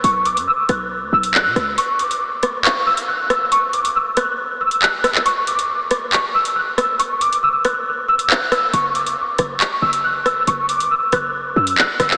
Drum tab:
HH |x-xx--x----x--x-|x-xx--x-x--x--x-|x-xx--x----x--x-|x-xx--x-x--x--x-|
CP |------------x---|--------x-------|------------x--x|--------x-------|
SD |------r-------r-|------r-------r-|------r-------r-|------r-------r-|

HH |x-xx--x----x--x-|x-xx--x-x--x--x-|x-xx--x----x--x-|
CP |------------x---|--------x-------|------------x--x|
SD |------r-------r-|------r-------r-|------r-------r-|